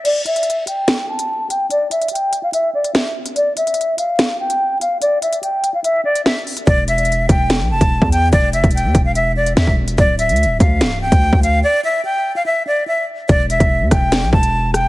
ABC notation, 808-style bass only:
X:1
M:4/4
L:1/16
Q:1/4=145
K:Ephr
V:1 name="808-style bass" clef=bass
z16 | z16 | z16 | z16 |
E,,,6 E,,,3 B,,, E,,, E,,,2 E,,3 | E,,,2 F,,, E,,,2 E,, E,,,6 E,, E,,,3 | D,,,3 D,,3/2 D,,,3/2 D,,2 C,,,3 D,,2 D,,3 | z16 |
E,,,3 E,,,2 E,, E,,,3 B,,, E,,,6 |]